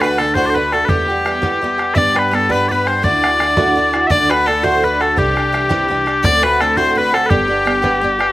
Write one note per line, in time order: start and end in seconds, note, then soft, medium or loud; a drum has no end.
0.00 0.87 D2 medium
0.00 0.19 A3 soft
0.00 0.19 D4 medium
0.00 0.18 F#4 medium
0.00 0.18 B4 medium
0.00 0.20 B4 medium
0.00 bodhran medium
0.04 0.18 D3 soft
0.18 0.36 D3 medium
0.18 0.36 A3 medium
0.18 0.35 D4 medium
0.18 0.35 F#4 medium
0.18 0.34 A4 medium
0.18 bodhran medium
0.34 0.56 D2 medium
0.34 0.56 A2 medium
0.34 0.54 D3 medium
0.34 0.54 A3 medium
0.34 0.56 D4 medium
0.34 0.56 F#4 medium
0.34 0.46 C5 medium
0.34 0.57 C5 medium
0.34 bodhran loud
0.46 0.55 C5 medium
0.46 0.50 D5 medium
0.55 0.72 D3 medium
0.55 0.72 A3 medium
0.55 0.72 D4 medium
0.55 0.71 F#4 medium
0.55 0.72 B4 medium
0.55 0.74 B4 medium
0.55 bodhran soft
0.72 0.88 D3 soft
0.72 0.89 A3 soft
0.72 0.89 D4 soft
0.72 0.89 F#4 medium
0.72 0.85 A4 medium
0.72 0.91 A4 medium
0.72 bodhran medium
0.85 1.94 E2 medium
0.85 1.08 E3 medium
0.85 0.89 B4 medium
0.85 bodhran medium
0.89 1.09 G3 medium
0.89 1.09 B3 medium
0.89 1.94 G4 medium
0.89 1.62 G4 medium
0.89 1.07 G4 medium
0.99 bodhran soft
1.08 1.25 G3 soft
1.08 1.26 B3 medium
1.08 1.25 G4 medium
1.25 1.42 E3 medium
1.25 1.42 G3 medium
1.25 1.42 B3 medium
1.25 1.41 G4 medium
1.25 bodhran medium
1.42 1.60 E3 medium
1.42 1.61 G3 medium
1.42 1.62 B3 medium
1.42 1.62 G4 medium
1.42 bodhran medium
1.61 1.79 E3 medium
1.61 1.79 G3 medium
1.61 1.78 B3 medium
1.61 1.77 G4 medium
1.61 bodhran soft
1.78 1.93 G3 soft
1.78 1.94 B3 soft
1.78 1.95 G4 medium
1.78 bodhran medium
1.94 3.01 G2 medium
1.94 2.15 G3 medium
1.94 2.16 B3 medium
1.94 2.15 D4 medium
1.94 2.13 G4 medium
1.94 2.17 D5 medium
1.94 2.19 D5 loud
1.94 1.98 E5 loud
1.94 bodhran medium
2.07 bodhran soft
2.14 2.31 B3 soft
2.14 2.32 D4 medium
2.14 2.32 G4 medium
2.14 2.28 B4 medium
2.14 bodhran medium
2.19 2.35 B4 loud
2.30 2.49 G3 medium
2.30 2.49 B3 medium
2.30 2.48 D4 medium
2.30 2.35 B4 medium
2.30 bodhran medium
2.34 2.48 G4 medium
2.34 2.50 A4 medium
2.34 2.51 A4 loud
2.49 2.67 G3 medium
2.49 2.69 B3 medium
2.49 2.69 D4 medium
2.49 2.69 G4 medium
2.49 2.69 B4 medium
2.49 2.68 B4 medium
2.49 bodhran medium
2.68 2.86 G3 medium
2.68 2.86 B3 medium
2.68 2.86 D4 medium
2.68 2.84 G4 medium
2.68 2.88 B4 medium
2.68 2.87 B4 medium
2.68 2.72 D5 medium
2.68 bodhran soft
2.85 3.03 B3 soft
2.85 3.02 D4 soft
2.85 3.03 G4 medium
2.85 3.05 C5 medium
2.85 3.04 C5 medium
2.85 bodhran medium
3.02 3.22 D2 medium
3.02 4.08 D2 medium
3.02 3.23 A2 medium
3.02 3.23 D3 medium
3.02 3.23 D4 medium
3.02 3.22 E4 medium
3.02 3.21 F#4 medium
3.02 4.07 D5 loud
3.02 3.94 D5 medium
3.02 bodhran medium
3.14 bodhran soft
3.23 3.38 D3 soft
3.23 3.39 D4 medium
3.23 3.40 E4 medium
3.23 3.40 F#4 medium
3.23 bodhran medium
3.39 3.56 D3 medium
3.39 3.56 D4 medium
3.39 3.56 E4 medium
3.39 3.55 F#4 medium
3.39 bodhran medium
3.57 3.77 D2 medium
3.57 3.77 A2 medium
3.57 3.74 D3 medium
3.57 3.76 D4 medium
3.57 3.76 E4 medium
3.57 3.76 F#4 medium
3.57 bodhran loud
3.75 3.93 D3 medium
3.75 3.94 D4 medium
3.75 3.93 E4 medium
3.75 3.92 F#4 medium
3.75 bodhran soft
3.93 4.09 D3 soft
3.93 4.09 D4 medium
3.93 4.10 E4 medium
3.93 4.10 F#4 medium
3.93 bodhran medium
4.07 4.30 D2 medium
4.07 5.15 D2 medium
4.07 4.30 A2 medium
4.07 4.30 D3 medium
4.07 4.30 D4 medium
4.07 4.31 D5 medium
4.07 4.30 D5 medium
4.07 4.11 E5 medium
4.07 bodhran medium
4.11 4.29 A3 medium
4.11 4.28 F#4 medium
4.21 bodhran soft
4.29 4.45 D3 soft
4.29 4.47 A3 medium
4.29 4.46 D4 medium
4.29 4.46 F#4 medium
4.29 4.47 B4 loud
4.29 4.47 B4 medium
4.29 bodhran medium
4.46 4.63 D3 medium
4.46 4.62 A3 medium
4.46 4.63 D4 medium
4.46 4.62 F#4 medium
4.46 4.65 A4 medium
4.46 4.64 A4 medium
4.46 bodhran medium
4.63 4.84 D2 medium
4.63 4.84 A2 medium
4.63 4.81 D3 medium
4.63 4.83 A3 medium
4.63 4.82 D4 medium
4.63 4.83 F#4 medium
4.63 4.85 C5 medium
4.63 4.84 C5 medium
4.63 bodhran medium
4.82 5.00 D3 medium
4.82 5.00 A3 medium
4.82 5.00 D4 medium
4.82 4.99 F#4 medium
4.82 5.02 B4 medium
4.82 5.01 B4 medium
4.82 bodhran soft
5.00 5.17 D3 soft
5.00 5.17 A3 medium
5.00 5.17 D4 soft
5.00 5.17 F#4 medium
5.00 5.16 A4 medium
5.00 5.18 A4 medium
5.00 bodhran medium
5.16 6.22 C2 medium
5.16 5.36 C3 medium
5.16 5.37 E3 medium
5.16 5.37 G3 medium
5.16 5.36 D4 medium
5.16 5.86 G4 medium
5.16 6.25 G4 medium
5.16 5.35 G4 medium
5.16 bodhran medium
5.27 bodhran soft
5.36 5.52 G3 soft
5.36 5.53 D4 medium
5.36 5.53 G4 medium
5.36 bodhran medium
5.52 5.70 E3 medium
5.52 5.69 G3 medium
5.52 5.69 D4 medium
5.52 5.68 G4 medium
5.52 bodhran medium
5.69 5.90 C3 medium
5.69 5.87 E3 medium
5.69 5.88 G3 medium
5.69 5.89 D4 medium
5.69 5.89 G4 medium
5.69 bodhran medium
5.88 6.06 E3 medium
5.88 6.07 G3 medium
5.88 6.07 D4 medium
5.88 6.05 G4 medium
5.88 bodhran soft
6.06 6.25 G3 medium
6.06 6.24 D4 medium
6.06 6.23 G4 medium
6.06 bodhran soft
6.23 7.28 D2 medium
6.23 6.44 D2 medium
6.23 6.44 A2 medium
6.23 6.44 D3 medium
6.23 6.43 A3 medium
6.23 6.44 C4 medium
6.23 6.42 F#4 medium
6.23 6.44 D5 loud
6.23 6.43 D5 loud
6.23 bodhran medium
6.34 bodhran soft
6.43 6.59 D3 soft
6.43 6.61 A3 medium
6.43 6.60 C4 soft
6.43 6.60 F#4 medium
6.43 6.62 B4 medium
6.43 6.61 B4 loud
6.43 bodhran medium
6.61 6.77 D3 medium
6.61 6.76 A3 medium
6.61 6.76 C4 medium
6.61 6.76 F#4 medium
6.61 6.76 A4 medium
6.61 6.77 A4 loud
6.61 bodhran medium
6.77 6.98 D2 medium
6.77 6.97 A2 medium
6.77 6.94 D3 medium
6.77 6.96 A3 medium
6.77 6.95 C4 medium
6.77 6.97 F#4 medium
6.77 6.95 C5 medium
6.77 6.98 C5 loud
6.77 bodhran medium
6.96 7.13 D3 medium
6.96 7.12 A3 medium
6.96 7.13 C4 medium
6.96 7.11 F#4 medium
6.96 7.15 B4 medium
6.96 7.14 B4 loud
6.96 bodhran soft
7.12 7.30 D3 soft
7.12 7.30 A3 soft
7.12 7.30 C4 medium
7.12 7.30 F#4 medium
7.12 7.26 A4 medium
7.12 7.33 A4 medium
7.12 bodhran medium
7.26 8.32 G4 loud
7.26 7.30 B4 loud
7.30 8.32 G1 medium
7.30 7.50 G3 medium
7.30 7.49 B3 medium
7.30 7.48 D4 medium
7.30 8.04 G4 medium
7.30 7.47 G4 medium
7.30 bodhran loud
7.41 bodhran soft
7.48 7.64 B3 medium
7.48 7.65 D4 medium
7.48 7.66 G4 medium
7.65 7.83 G3 medium
7.65 7.82 B3 medium
7.65 7.81 D4 medium
7.65 7.81 G4 medium
7.65 bodhran medium
7.82 8.00 G3 medium
7.82 8.01 B3 medium
7.82 8.03 D4 medium
7.82 8.03 G4 medium
7.82 bodhran medium
8.01 8.19 G3 medium
8.01 8.20 B3 medium
8.01 8.19 D4 medium
8.01 8.18 G4 medium
8.01 bodhran soft
8.19 8.32 B3 soft
8.19 8.32 D4 medium
8.19 8.32 G4 medium
8.19 bodhran medium